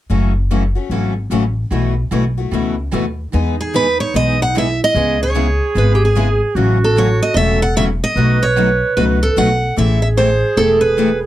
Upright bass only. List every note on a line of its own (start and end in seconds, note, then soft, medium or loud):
0.10 0.75 F#1 medium
0.90 1.25 G#1 medium
1.30 1.65 A1 medium
1.71 2.04 B1 medium
2.11 2.46 B1 medium
2.52 2.87 C#2 medium
2.93 3.27 D#2 medium
3.34 3.98 E2 medium
4.14 4.78 B1 medium
4.95 5.59 C#2 medium
5.75 6.39 G#1 medium
6.55 7.19 A1 medium
7.35 8.00 E1 medium
8.16 8.80 B1 medium
8.97 9.31 C#2 medium
9.37 9.71 B1 medium
9.77 10.41 A1 medium
10.57 11.21 E1 medium